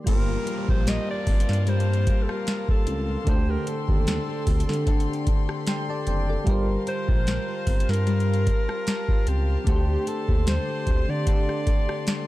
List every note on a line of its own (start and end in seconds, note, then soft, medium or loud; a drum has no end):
0.04 0.37 G1 loud
0.04 3.22 G3 medium
0.04 1.66 G3 medium
0.04 3.24 A#3 medium
0.04 3.22 F4 medium
0.04 3.23 G4 medium
0.04 0.46 A#4 medium
0.04 3.24 F5 medium
0.04 3.24 A5 medium
0.04 9.63 C6 medium
0.04 kick loud
0.04 closed hi-hat medium
0.04 crash medium
0.04 downlifter medium
0.09 3.24 A#3 medium
0.09 0.65 A#4 loud
0.09 3.25 C5 medium
0.28 0.67 F4 medium
0.47 0.86 A#4 medium
0.47 closed hi-hat medium
0.68 0.99 A#1 medium
0.68 1.07 F4 medium
0.68 0.90 C5 medium
0.68 kick medium
0.87 1.66 A#4 medium
0.87 1.09 D#5 loud
0.87 snare loud
0.87 closed hi-hat medium
1.08 1.47 F4 medium
1.08 1.70 D5 loud
1.27 1.43 G1 medium
1.27 2.87 C4 medium
1.27 kick medium
1.27 closed hi-hat medium
1.27 open hi-hat soft
1.40 closed hi-hat medium
1.48 2.09 G2 loud
1.48 1.87 F4 medium
1.48 snare medium
1.53 closed hi-hat medium
1.67 3.70 G3 medium
1.67 2.06 A#4 medium
1.67 2.24 C5 loud
1.67 closed hi-hat medium
1.80 closed hi-hat soft
1.89 2.27 F4 medium
1.93 closed hi-hat soft
2.07 2.47 A#4 medium
2.07 kick medium
2.07 closed hi-hat medium
2.23 2.32 A4 medium
2.28 2.67 F4 medium
2.28 2.69 A#4 medium
2.28 cross-stick medium
2.47 snare loud
2.47 closed hi-hat medium
2.68 3.07 F4 medium
2.68 3.30 A4 medium
2.68 kick medium
2.87 3.17 C#2 medium
2.87 4.46 C4 medium
2.87 closed hi-hat medium
3.08 3.35 F4 medium
3.24 3.57 D2 loud
3.24 6.02 D3 medium
3.24 4.86 D3 medium
3.24 6.03 A3 medium
3.24 6.44 A4 medium
3.24 3.66 A4 medium
3.24 6.44 D5 medium
3.24 6.44 G5 medium
3.24 kick loud
3.24 closed hi-hat medium
3.29 3.35 F4 soft
3.29 3.52 C5 loud
3.29 5.65 C5 medium
3.35 6.07 G4 medium
3.48 3.88 G4 medium
3.48 3.71 A#4 medium
3.67 4.07 A4 medium
3.67 5.28 A4 medium
3.67 closed hi-hat medium
3.88 4.19 D#2 loud
3.88 4.28 G4 medium
3.88 kick medium
4.07 4.87 A4 medium
4.07 snare loud
4.07 closed hi-hat medium
4.28 4.68 G4 medium
4.47 4.63 D2 loud
4.47 6.06 C4 medium
4.47 kick medium
4.47 closed hi-hat medium
4.47 open hi-hat soft
4.60 closed hi-hat medium
4.69 5.29 D3 loud
4.69 5.08 G4 medium
4.69 snare medium
4.73 closed hi-hat medium
4.87 7.70 D3 medium
4.87 5.26 A4 medium
4.87 kick medium
4.87 closed hi-hat medium
5.00 closed hi-hat soft
5.08 5.48 G4 medium
5.13 closed hi-hat soft
5.27 5.66 A4 medium
5.27 kick medium
5.27 closed hi-hat medium
5.48 5.88 G4 medium
5.48 cross-stick medium
5.67 6.47 A4 medium
5.67 5.88 G5 medium
5.67 5.88 C6 medium
5.67 snare loud
5.67 closed hi-hat medium
5.88 6.28 G4 medium
5.88 6.07 D5 medium
5.88 6.06 A5 medium
6.07 6.37 F#1 medium
6.07 6.90 C4 medium
6.07 6.28 D5 medium
6.07 6.28 G5 medium
6.07 closed hi-hat medium
6.28 6.68 G4 medium
6.28 6.67 A4 medium
6.28 6.67 D5 medium
6.44 6.77 G1 loud
6.44 9.61 G3 medium
6.44 8.06 G3 medium
6.44 9.62 F4 medium
6.44 9.63 G4 medium
6.44 9.64 A#4 medium
6.44 6.85 A#4 medium
6.44 9.64 F5 medium
6.44 12.27 A5 medium
6.44 kick loud
6.44 closed hi-hat medium
6.49 9.64 A#4 medium
6.49 9.65 C5 medium
6.68 7.07 F4 medium
6.87 7.25 A#4 medium
6.87 7.91 C5 loud
6.87 closed hi-hat medium
7.08 7.39 A#1 medium
7.08 7.47 F4 medium
7.08 kick medium
7.27 8.06 A#4 medium
7.27 snare loud
7.27 closed hi-hat medium
7.48 7.87 F4 medium
7.67 7.83 G1 loud
7.67 9.26 C4 medium
7.67 kick medium
7.67 closed hi-hat medium
7.67 open hi-hat medium
7.80 closed hi-hat medium
7.88 8.49 G2 loud
7.88 8.27 F4 medium
7.88 9.30 A#4 loud
7.88 snare medium
7.93 closed hi-hat medium
8.07 10.10 G3 medium
8.07 8.46 A#4 medium
8.07 closed hi-hat medium
8.20 closed hi-hat soft
8.28 8.67 F4 medium
8.33 closed hi-hat soft
8.47 8.86 A#4 medium
8.47 kick medium
8.47 closed hi-hat medium
8.68 9.07 F4 medium
8.68 cross-stick medium
8.87 9.67 A#4 medium
8.87 snare loud
8.87 closed hi-hat medium
9.08 9.47 F4 medium
9.08 kick medium
9.27 9.57 C#2 medium
9.27 10.86 C4 medium
9.27 9.68 G4 medium
9.27 closed hi-hat medium
9.48 9.75 F4 medium
9.64 9.97 D2 loud
9.64 12.27 D3 medium
9.64 11.26 D3 medium
9.64 12.27 A3 medium
9.64 12.27 G4 medium
9.64 10.07 A4 medium
9.64 12.27 D5 medium
9.64 12.27 C6 medium
9.64 kick loud
9.64 closed hi-hat medium
9.68 9.75 F#4 soft
9.68 10.10 G4 medium
9.68 12.27 C5 medium
9.76 12.27 G4 medium
9.88 10.28 G4 medium
10.07 10.46 A4 medium
10.07 10.50 A4 loud
10.07 closed hi-hat medium
10.28 10.59 D#2 loud
10.28 10.68 G4 medium
10.28 kick medium
10.47 11.27 A4 medium
10.47 11.11 C5 loud
10.47 snare loud
10.47 closed hi-hat medium
10.68 11.08 G4 medium
10.87 11.03 D2 loud
10.87 12.27 C4 medium
10.87 kick medium
10.87 closed hi-hat medium
11.08 11.69 D3 loud
11.08 11.48 G4 medium
11.08 11.28 D5 loud
11.27 12.27 D3 medium
11.27 11.66 A4 medium
11.27 12.27 D5 loud
11.27 kick medium
11.27 closed hi-hat medium
11.48 11.88 G4 medium
11.48 cross-stick medium
11.67 12.07 A4 medium
11.67 kick medium
11.67 closed hi-hat medium
11.88 12.27 G4 medium
11.88 cross-stick medium
12.07 12.27 A4 medium
12.07 snare loud
12.07 closed hi-hat medium